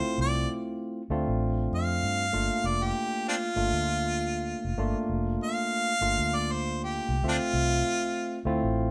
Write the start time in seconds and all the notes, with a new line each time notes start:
Already playing: A3 C4 E4 F4 C5
0.18 C2 D5
1.10 D2 A3 C4 D4 F4
1.28 A1
1.72 F2 F5
2.03 G2
2.33 G1 A3 A#3 D4 F4
2.64 F1 D5
2.83 G4
3.28 C4 D4 F4
3.56 G1 A3 A#3 D4 F4
3.72 D2
4.64 F1
4.78 G1 A3 A#3 D4 F4
5.09 F1
5.43 F5
6.01 G1 A3 A#3 D4 F4
6.18 D2
6.35 D5
6.51 C5
6.84 G4
7.09 C2
7.23 D2 A3 C4 F4 E5
7.28 C4 D4 F4
7.53 C2
8.45 D2 A3 C4 E4 F4
8.63 A1